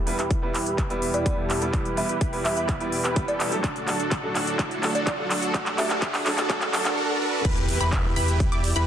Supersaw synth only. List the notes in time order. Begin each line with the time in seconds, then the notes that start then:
Already playing: E4 G4 B4
0.19 E4 G4 B4
0.55 E4 G4 B4
0.90 E4 G4 D5
1.14 E4 G4 B4
1.38 E4 G4 A4
1.74 E4 G4 B4
2.09 E4 G4 B4
2.45 E4 G4 B4
2.81 E4 G4 D5
3.05 E4 G4 B4
3.28 E4 G4 A4
3.64 D4 F#4
4.00 D4 F#4 A4
4.35 D4 F#4 A4
4.59 D4 F#4
4.95 D4 F#4 A4
5.31 D4 F#4 A4
5.55 D4 A4
5.90 D4 F#4 A4
6.02 F#4
6.38 D4 F#4 A4
6.50 D4 F#4 A4
6.73 D4 F#4 A4
6.97 D4 F#4 A4
7.21 D4 F#4 A4
7.45 G4 B4
7.81 E4 G4 B4
8.16 E4 G4 B4
8.52 E4 G4 D5
8.76 E4 G4 B4